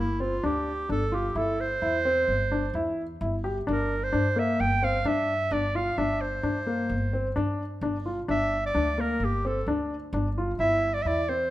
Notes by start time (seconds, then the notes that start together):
Already playing: G1
0.00 E4
0.20 C4 F4
0.43 D2 D4 G4
0.89 G1 D4 A4
1.12 F4 G4
1.35 G1 E4 A4
1.60 C5
1.82 E2 E4
2.05 C4
2.28 G1
2.52 D4
2.74 E2 E4
3.21 G1 E4
3.44 G4
3.67 G1 D4 A#4
4.03 C5
4.13 G2 D4
4.36 A#3 E5
4.60 G1 G5
4.82 C4 F5
5.05 G2 D4 E5
5.51 G1 D4 D5
5.75 F4 F5
5.97 G1 D4 E5
6.21 C5
6.43 G2 D4
6.67 A#3
6.89 G1
7.13 C4
7.36 G2 D4
7.81 G1 D4
8.06 F4
8.28 G1 D4 E5
8.66 D5
8.75 D2 D4
8.98 A#3 A#4
9.20 G1
9.24 G4
9.45 C4 A4
9.66 D2 D4
10.13 G1 D4
10.38 F4
10.59 G1 E4 E5
10.94 D5
11.02 E2 E4 E5
11.07 D5
11.29 C4 C5